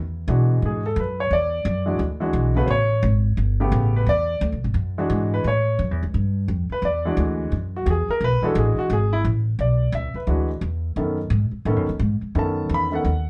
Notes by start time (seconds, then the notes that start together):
Already playing: E2
0.28 B2 E3 G#3 D4 F#4
0.62 G#2 G#4
0.86 A4
0.96 F#2 B4
1.20 C#5
1.31 E2 D5
1.65 F#2
1.86 E3 G#3 D4 F#4
1.99 D2
2.20 E3 G#3 D4 F#4
2.33 B1
2.56 C#3 A3 B3 F#4 B4
2.66 A1 C5
2.71 C#5
3.03 G#1
3.37 G1
3.60 C#3 A3 B3 G4
3.72 A1
3.96 B4
4.06 E2 D5
4.41 D2
4.52 B1
4.64 G#1
4.74 F#2
4.98 E3 G#3 D4 F#4
5.10 G#2
5.34 B4
5.44 A2 C#5
5.79 F#2
5.91 E2
6.03 C#2
6.14 G2
6.48 F2
6.69 B4, muted upright bass stroke
6.82 E2 D5
7.05 E3 G#3 D4 F#4
7.17 D2
7.52 F#2
7.76 F#4
7.86 E2 G4
7.90 G#4
8.08 A#4, muted upright bass stroke
8.21 B1 B4
8.42 E3 G#3 D4 F#4 A4, muted upright bass stroke
8.55 A1 G#4
8.77 F#4, muted upright bass stroke
8.90 G#1 G#4
9.13 E4
9.24 A1
9.59 B1 D5
9.92 C#2 E5
10.14 B4, muted upright bass stroke
10.27 D2 E3 G#3 D4 F#4
10.61 E2
10.96 F#2 D#3 B3 C#4 A4
11.30 G#2
11.51 muted upright bass stroke
11.65 A2 D#3 B3 C#4 A4
11.76 F#2
11.89 D#2
11.99 G#2
12.22 muted upright bass stroke
12.35 F#2 D#3 B3 C#4 A4 A5
12.69 E2
12.74 B5
12.92 D#3 B3 C#4 A4 F#5
13.05 D#2